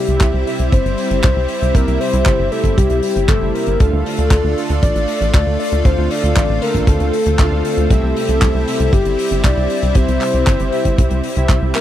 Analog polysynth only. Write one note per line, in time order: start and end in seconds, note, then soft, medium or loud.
0.00 0.44 C3 medium
0.00 0.44 C4 medium
0.00 0.44 E4 medium
0.00 0.44 G4 medium
0.00 0.44 E5 medium
0.47 0.72 C3 medium
0.47 0.72 C4 medium
0.47 0.72 E4 medium
0.47 0.72 G4 medium
0.47 0.72 E5 medium
1.75 2.49 C3 medium
1.75 2.49 C4 medium
1.75 2.49 E4 medium
1.75 2.49 G4 medium
1.75 2.49 E5 loud
2.52 3.00 C3 medium
2.52 3.00 C4 medium
2.52 3.00 E4 medium
2.52 3.00 G4 medium
2.52 3.00 E5 loud
3.29 3.77 C3 loud
3.29 3.77 C4 medium
3.29 3.77 E4 medium
3.29 3.77 G4 medium
3.29 3.77 E5 loud
3.80 4.54 D3 medium
3.80 4.54 D4 medium
3.80 4.54 F4 medium
3.80 4.54 A4 medium
3.80 4.54 F5 medium
4.57 4.82 D3 medium
4.57 4.82 D4 medium
4.57 4.82 F4 medium
4.57 4.82 A4 medium
4.57 4.82 F5 medium
5.85 6.59 D3 medium
5.85 6.59 D4 medium
5.85 6.59 F4 medium
5.85 6.59 A4 medium
5.85 6.59 F5 loud
6.62 7.10 D3 medium
6.62 7.10 D4 medium
6.62 7.10 F4 medium
6.62 7.10 A4 medium
6.62 7.10 F5 loud
7.39 7.87 D3 loud
7.39 7.87 D4 medium
7.39 7.87 F4 medium
7.39 7.87 A4 medium
7.39 7.87 F5 loud
7.90 8.64 C3 medium
7.90 8.64 C4 medium
7.90 8.64 E4 medium
7.90 8.64 G4 medium
7.90 8.64 E5 loud
8.67 8.92 C3 medium
8.67 8.92 C4 medium
8.67 8.92 E4 medium
8.67 8.92 G4 medium
8.67 8.92 E5 medium
9.95 10.69 C3 medium
9.95 10.69 C4 medium
9.95 10.69 E4 medium
9.95 10.69 G4 medium
9.95 10.69 E5 loud
10.72 11.21 C3 medium
10.72 11.21 C4 medium
10.72 11.21 E4 medium
10.72 11.21 G4 medium
10.72 11.21 E5 loud
11.37 11.72 C3 medium
11.37 11.72 C4 medium
11.37 11.72 E4 medium
11.37 11.72 G4 medium
11.37 11.72 E5 loud
11.75 11.81 C4 medium
11.75 11.81 E4 medium
11.75 11.81 G4 medium
11.75 11.81 G5 loud